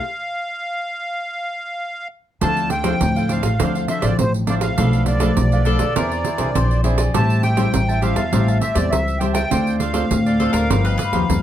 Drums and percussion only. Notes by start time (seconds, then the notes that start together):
2.41 pandeiro
2.57 pandeiro
2.70 pandeiro
2.84 pandeiro
3.01 pandeiro
3.16 pandeiro
3.29 pandeiro
3.43 pandeiro
3.60 pandeiro
3.75 pandeiro
3.88 pandeiro
4.02 pandeiro
4.19 pandeiro
4.34 pandeiro
4.47 pandeiro
4.61 pandeiro
4.78 pandeiro
4.93 pandeiro
5.06 pandeiro
5.20 pandeiro
5.37 pandeiro
5.52 pandeiro
5.65 pandeiro
5.79 pandeiro
5.96 pandeiro
6.11 pandeiro
6.25 pandeiro
6.38 pandeiro
6.55 pandeiro
6.71 pandeiro
6.84 pandeiro
6.98 pandeiro
7.14 pandeiro
7.30 pandeiro
7.43 pandeiro
7.57 pandeiro
7.74 pandeiro
7.89 pandeiro
8.02 pandeiro
8.16 pandeiro
8.33 pandeiro
8.48 pandeiro
8.61 pandeiro
8.75 pandeiro
8.93 pandeiro
9.08 pandeiro
9.21 pandeiro
9.35 pandeiro
9.51 pandeiro
9.67 pandeiro
9.80 pandeiro
9.94 pandeiro
10.11 pandeiro
10.26 pandeiro
10.40 pandeiro
10.54 pandeiro
10.71 pandeiro
10.86 pandeiro
10.99 pandeiro
11.13 pandeiro
11.30 pandeiro